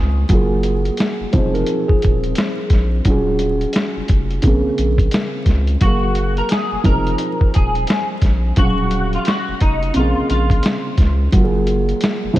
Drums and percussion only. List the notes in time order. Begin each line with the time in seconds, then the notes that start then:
0.29 kick, closed hi-hat
0.63 closed hi-hat
0.85 closed hi-hat
0.97 snare, closed hi-hat
1.33 kick, closed hi-hat
1.55 closed hi-hat
1.66 closed hi-hat
1.89 kick
2.02 kick, closed hi-hat
2.24 closed hi-hat
2.35 snare, closed hi-hat
2.70 kick, snare, closed hi-hat
3.05 kick, closed hi-hat
3.39 closed hi-hat
3.61 closed hi-hat
3.73 snare, closed hi-hat
4.08 kick, closed hi-hat
4.30 closed hi-hat
4.42 kick, closed hi-hat
4.78 closed hi-hat
4.98 kick, closed hi-hat
5.11 snare, closed hi-hat
5.46 kick, snare, closed hi-hat
5.67 closed hi-hat
5.81 kick, closed hi-hat
6.15 closed hi-hat
6.37 closed hi-hat
6.49 snare, closed hi-hat
6.84 kick, closed hi-hat
7.07 closed hi-hat
7.18 closed hi-hat
7.41 kick
7.54 kick, closed hi-hat
7.75 closed hi-hat
7.87 snare, closed hi-hat
8.22 kick, snare, closed hi-hat
8.56 kick, closed hi-hat
8.91 closed hi-hat
9.13 closed hi-hat
9.25 snare, closed hi-hat
9.60 kick, closed hi-hat
9.83 closed hi-hat
9.94 closed hi-hat
10.30 closed hi-hat
10.50 kick, closed hi-hat
10.63 snare, closed hi-hat
10.97 kick, snare, closed hi-hat
11.32 kick, closed hi-hat
11.67 closed hi-hat
11.89 closed hi-hat
12.01 snare, closed hi-hat
12.36 closed hi-hat